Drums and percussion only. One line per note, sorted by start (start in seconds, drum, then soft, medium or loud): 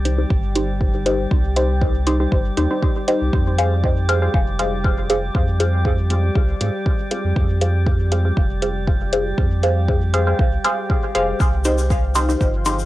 0.05 closed hi-hat medium
0.30 kick loud
0.56 closed hi-hat medium
0.81 kick loud
1.06 closed hi-hat medium
1.31 kick loud
1.56 closed hi-hat medium
1.82 kick loud
2.07 closed hi-hat medium
2.32 kick loud
2.57 closed hi-hat medium
2.83 kick loud
3.08 closed hi-hat medium
3.33 kick loud
3.58 closed hi-hat medium
3.83 kick loud
4.09 closed hi-hat medium
4.34 kick loud
4.59 closed hi-hat medium
4.84 kick loud
5.10 closed hi-hat medium
5.35 kick loud
5.60 closed hi-hat medium
5.85 kick loud
6.10 closed hi-hat medium
6.35 kick loud
6.61 closed hi-hat medium
6.86 kick loud
7.11 closed hi-hat medium
7.36 kick loud
7.62 closed hi-hat medium
7.87 kick loud
8.12 closed hi-hat medium
8.37 kick loud
8.62 closed hi-hat medium
8.88 kick loud
9.13 closed hi-hat medium
9.38 kick loud
9.63 closed hi-hat medium
9.88 kick loud
10.14 closed hi-hat medium
10.39 kick loud
10.64 closed hi-hat medium
10.89 kick loud
11.14 closed hi-hat medium
11.40 kick loud
11.40 shaker soft
11.64 closed hi-hat medium
11.64 shaker loud
11.78 shaker medium
11.90 kick loud
11.90 shaker soft
12.15 closed hi-hat medium
12.15 shaker medium
12.29 shaker medium
12.41 kick loud
12.41 shaker soft
12.65 closed hi-hat medium
12.65 shaker medium
12.79 shaker medium